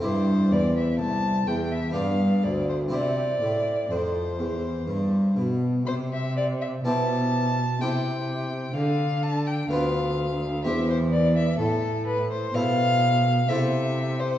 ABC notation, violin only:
X:1
M:3/4
L:1/16
Q:1/4=63
K:C
V:1 name="Violin"
c2 d e a2 g e f2 d c | d4 c6 z2 | c e d e a4 g4 | f2 a g f4 e c d e |
A2 B c f4 e3 c |]